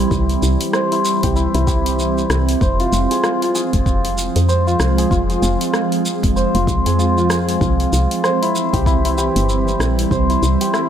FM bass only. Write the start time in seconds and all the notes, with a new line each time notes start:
0.11 C2
0.43 C2
1.23 C2
1.55 C2
2.30 C2
2.61 F1
2.92 F1
3.73 F1
4.36 F2
4.80 C2
5.11 F1
5.42 F1
6.23 F1
6.55 F1
6.67 C2
6.86 F2
7.61 C2
7.93 C2
8.73 C2
9.36 G1
9.80 A#1
10.11 C2
10.42 C2